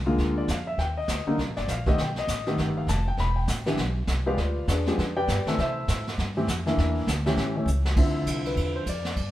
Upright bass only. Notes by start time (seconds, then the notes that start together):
Already playing: C2
0.18 D2
0.48 F2
0.78 D#2
1.08 D2
1.27 muted upright bass stroke
1.38 C2
1.49 A#1
1.58 G1
1.68 A#1
1.98 B1
2.27 A1
2.57 G1
2.87 F1
3.17 E1
3.48 A1
3.77 B1
4.07 C2
4.37 D2
4.67 E2
4.98 F2
5.28 G2
5.45 muted upright bass stroke
5.58 C3
5.88 A2
6.18 G2
6.47 F2
6.77 E2
7.07 D2
7.37 A1
7.66 C#2
7.96 D2
8.26 C2
8.56 E2
8.86 F2
9.17 G2